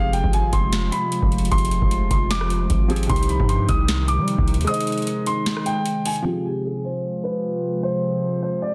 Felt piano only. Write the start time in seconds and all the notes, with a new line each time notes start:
Already playing: F3 C4 G4 G#4
2.88 F3 C4 G4 G#4
3.07 C3 C4
3.11 D#4 G4
4.64 G#3 G#4
4.69 C5 D#5
6.22 F3 C4
6.26 G4 G#4